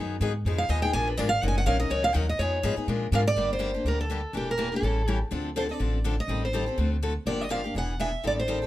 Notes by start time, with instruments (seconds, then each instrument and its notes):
Already playing: upright bass F#2, steel-string acoustic guitar D#3 F#3
0.00 steel-string acoustic guitar B3 D#4 G#4
0.21 upright bass G#2, steel-string acoustic guitar D#3 F#3 B3 D#4 G#4
0.45 upright bass F2, steel-string acoustic guitar F3 B3 D#4 G#4
0.58 steel-string acoustic guitar F5
0.69 upright bass D#2, steel-string acoustic guitar F3 B3 D#4 G#4 D#5
0.82 steel-string acoustic guitar B3 D#4 G#4 G5
0.93 upright bass A#1, steel-string acoustic guitar F3 G#3 D4 F4 A#4 G#5
1.08 steel-string acoustic guitar B4
1.17 upright bass G#1, steel-string acoustic guitar F3 G#3 D4 F4 A#4 D5
1.29 steel-string acoustic guitar F5
1.42 upright bass F#1, steel-string acoustic guitar D#3 F#3 C#4 D#4 A#4 F#5
1.48 steel-string acoustic guitar G#5
1.58 steel-string acoustic guitar F#5
1.66 upright bass A#1, steel-string acoustic guitar D#3 F#3 C#4 D#4 A#4 F5
1.80 steel-string acoustic guitar C#4 D#4 A#4 D#5
1.90 upright bass C#2, steel-string acoustic guitar D#3 F#3 C#4 D#4 A#4 C#5
2.04 steel-string acoustic guitar F5
2.13 upright bass D#2, steel-string acoustic guitar D#3 F#3 C#4 D#4 A#4 F#5
2.29 steel-string acoustic guitar D#5
2.39 upright bass F2, steel-string acoustic guitar F3 B3 D#4 G#4 C#5
2.63 upright bass G#2, steel-string acoustic guitar F3 B3 D#4 G#4
2.76 steel-string acoustic guitar B3 D#4 G#4, muted upright bass stroke
2.88 upright bass A#2, steel-string acoustic guitar F3 G#3 D4 F4 A#4
3.12 upright bass G#2, steel-string acoustic guitar F3 G#3 D4 F4 A#4 F5
3.28 steel-string acoustic guitar D5
3.36 upright bass G1, steel-string acoustic guitar D3 G3 A#3 D4 G4
3.53 steel-string acoustic guitar C5
3.59 steel-string acoustic guitar D3 G3 A#3 D4 G4
3.74 steel-string acoustic guitar A#3 D4 G4
3.85 upright bass D2, steel-string acoustic guitar D3 G3 A#3 D4 G4 A#4
4.01 steel-string acoustic guitar A4
4.10 steel-string acoustic guitar D3 G3 A#3 D4 G4
4.33 upright bass E1, steel-string acoustic guitar E3 A#3 D4 G4
4.51 steel-string acoustic guitar A#4
4.58 steel-string acoustic guitar E3 A#3 D4 G4
4.72 steel-string acoustic guitar A#3 D4 G4
4.76 steel-string acoustic guitar A4
4.82 upright bass A1, steel-string acoustic guitar E3 G3 C#4 E4 A4
5.08 steel-string acoustic guitar E3 G3 C#4 E4 A4
5.31 upright bass D2, steel-string acoustic guitar D3 F3 C4 D4 A4
5.56 steel-string acoustic guitar D3 F3 C4 D4 A4 C5
5.69 steel-string acoustic guitar C4 D4 A4 D5
5.79 upright bass A1, steel-string acoustic guitar D3 F3 C4 D4 A4
6.04 steel-string acoustic guitar D3 F3 C4 D4 A4
6.20 steel-string acoustic guitar D#5
6.28 upright bass A1, steel-string acoustic guitar D#3 G3 C4 G4 A4
6.45 steel-string acoustic guitar C5
6.53 steel-string acoustic guitar D#3 G3 C4 G4 A4
6.66 steel-string acoustic guitar C4 A4
6.78 upright bass D2, steel-string acoustic guitar D3 A3 C4 F#4 A4
7.02 steel-string acoustic guitar D3 A3 C4 F#4 A4
7.26 upright bass G1, steel-string acoustic guitar D3 F3 A#3 D4 G4 D5
7.41 steel-string acoustic guitar D#5
7.49 steel-string acoustic guitar D3 F3 A#3 D4 G4 F5
7.64 steel-string acoustic guitar A#3 D4 G4
7.75 upright bass E1, steel-string acoustic guitar E3 B3 D4 G#4 F#5
8.00 steel-string acoustic guitar E3 B3 D4 G#4 E5
8.24 upright bass A1, steel-string acoustic guitar D#3 G3 C4 G4 A4 D5
8.40 steel-string acoustic guitar C5
8.48 steel-string acoustic guitar D#3 G3 C4 G4 A4
8.62 steel-string acoustic guitar G4 A4